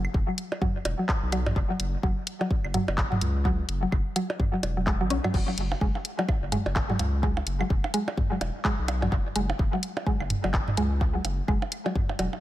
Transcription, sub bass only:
0.14 F#1
0.85 E1
1.23 B1
1.46 A1
1.56 F#1
1.80 F#1
2.03 F#1
2.64 F#1
2.88 F#1
3.21 C#2
3.69 F#1
3.92 F#1
4.63 E1
5.01 A1
5.10 B1
5.34 F#1
5.58 F#1
5.81 F#1
6.42 F#1
6.66 F#1
6.99 C#2
7.47 F#1
7.70 F#1
8.41 E1
8.79 B1
9.02 A1
9.12 F#1
9.36 F#1
9.59 F#1
10.20 F#1
10.44 F#1
10.77 C#2
11.25 F#1
11.48 F#1
12.19 E1

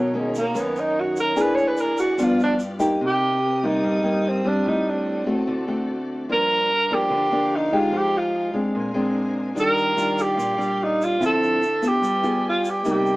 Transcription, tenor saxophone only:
Already playing: F#3
0.18 G#3
0.38 A#3
0.59 B3
0.79 D#4
1.00 F#4
1.20 A#4
1.41 B4
1.55 C#5
1.67 B4
1.80 A#4
2.00 F#4
2.23 F4
2.43 D4
3.06 G4
3.66 D#4
4.28 C4
4.47 D4
4.68 D#4
4.89 D4
6.32 A#4
6.94 G4
7.56 D#4
7.77 F4
7.97 G4
8.18 F4
9.60 A#4
10.22 G4
10.84 D#4
11.04 F4
11.26 A4
11.88 G4
12.49 F4
12.70 G4
12.91 G4

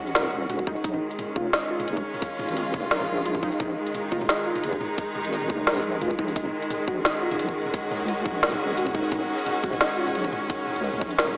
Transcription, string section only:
Already playing: D#3 G#3 C#4 F#4
0.84 D#3
0.96 G#3
1.19 C#4
2.12 F4
3.95 D#4
4.41 D#4
6.86 C#4
7.14 F#4

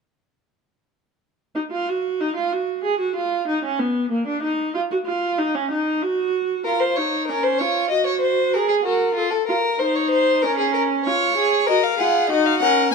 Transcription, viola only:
1.55 D#4
1.71 F4
1.89 F#4
2.20 D#4
2.36 F4
2.53 F#4
2.84 G#4
2.99 F#4
3.16 F4
3.48 D#4
3.64 C#4
3.79 B3
4.11 A#3
4.27 D4
4.43 D#4
4.74 F4
4.91 F#4
5.06 F4
5.38 D#4
5.55 C#4
5.71 D#4
6.02 F#4
6.66 F4
6.97 D#4
7.29 C#4
7.60 F4
7.91 F#4
8.55 G#4
8.86 A#4
9.18 A4
9.49 F4
9.80 D#4
10.44 C#4
11.07 F4
11.37 G#4
11.69 F#4
11.99 F4
12.31 D#4
12.62 C#4

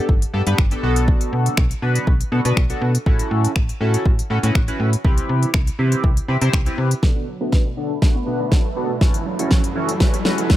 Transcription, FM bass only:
0.09 G1
0.34 G2
0.47 G2
0.58 G1
0.83 B1
1.33 B2
1.58 B1
1.82 B2
2.07 B1
2.32 B2
2.45 B2
2.57 B1
2.82 B2
3.06 A1
3.31 A2
3.56 A1
3.81 A2
4.05 A1
4.30 A2
4.43 A2
4.55 A1
4.80 A2
5.04 C2
5.29 C3
5.54 C2
5.79 C3
6.04 C2
6.28 C3
6.42 C3
6.53 C2
6.78 C3

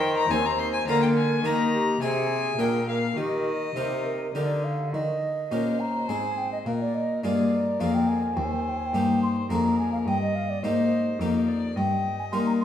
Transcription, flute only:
Already playing: C5
0.88 A#4
1.45 A#4
1.73 G4
2.01 G#4
2.59 A#4
3.17 G4
3.76 C5
4.06 A#4
4.35 D5
4.64 F5
4.93 D#5
5.80 A#5
6.09 G#5
6.38 G5
6.52 D#5
6.66 F5
6.81 D5
6.94 D#5
7.24 D5
7.80 F5
7.95 G5
8.08 G#5
8.36 G5
8.44 G#5
8.52 G5
8.61 G#5
8.69 G5
8.77 G#5
8.86 G5
9.23 C6
9.51 A#5
9.79 G#5
9.93 F5
10.07 G5
10.22 D#5
10.35 F5
10.50 D5
10.63 D#5
11.77 G5
12.19 G#5
12.32 C6
12.46 A#5
12.60 C6

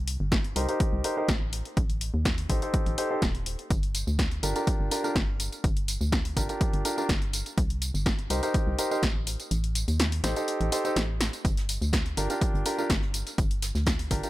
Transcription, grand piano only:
0.56 D#4 G4 A#4 C5
0.69 D#4 G4 A#4 C5
1.04 D#4 G4 A#4 C5
1.17 D#4 G4 A#4 C5
2.50 D#4 G4 A4 C5
2.62 D#4 G4 A4 C5
2.98 D#4 G4 A4 C5
3.11 D#4 G4 A4 C5
4.43 D4 F4 G4 A#4
4.56 D4 F4 G4 A#4
4.91 D4 F4 G4 A#4
5.04 D4 F4 G4 A#4
6.37 D4 F4 G4 A#4
6.49 D4 F4 G4 A#4
6.85 D4 F4 G4 A#4
6.98 D4 F4 G4 A#4
8.30 D#4 G4 A#4 C5
8.43 D#4 G4 A#4 C5
8.79 D#4 G4 A#4 C5
8.91 D#4 G4 A#4 C5
10.24 D#4 G4 A4 C5
10.36 D#4 G4 A4 C5
10.72 D#4 G4 A4 C5
10.85 D#4 G4 A4 C5
12.17 D4 F4 G4 A#4
12.30 D4 F4 G4 A#4
12.66 D4 F4 G4 A#4
12.78 D4 F4 G4 A#4
14.11 D4 F4 G4 A#4
14.23 D4 F4 G4 A#4

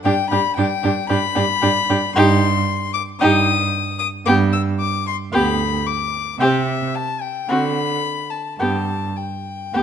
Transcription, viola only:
0.06 D4
0.32 D4
0.58 D4
0.84 D4
1.10 D4
1.35 D4
1.62 D4
1.90 D4
2.16 D#4
3.21 D#4
4.26 B3
5.32 B3
6.40 C4
7.48 C4
8.59 B3
9.74 B3

